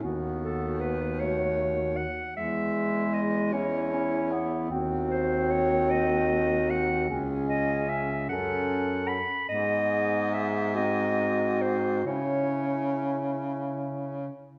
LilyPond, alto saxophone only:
\new Staff \with { instrumentName = "Alto saxophone" } { \time 6/8 \key cis \minor \tempo 4. = 50 fis'4. fis'4 r8 | gis'4. e'4. | ges'2. | gis'4. a'4 r8 |
gis'4. fis'4. | e'2~ e'8 r8 | }